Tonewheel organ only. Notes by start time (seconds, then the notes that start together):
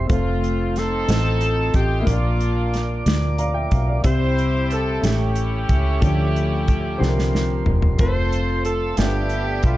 Already playing: C5
0.10 F4 A4 C6
1.09 D#5
2.06 A#4 D5 D6
4.04 C5 E5 G5 E6
5.04 A4 C#6
6.03 D6
7.00 A#4 C6
7.99 A4 C5
8.98 E5 B5